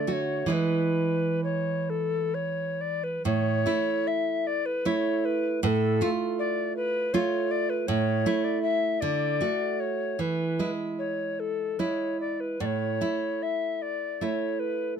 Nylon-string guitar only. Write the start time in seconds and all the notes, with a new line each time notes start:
Already playing: D3
0.07 A3 F#4
0.46 E3 G#3 E4
3.25 A2
3.66 A3 E4
4.85 A3 E4
5.63 A2
6.01 A3 F4
7.14 A3 F4
7.88 A2
8.26 A3 E4
9.02 D3
9.41 A3 F#4
10.19 E3
10.59 G#3 E4
11.79 G#3 E4
12.60 A2
13.01 A3 E4
14.21 A3 E4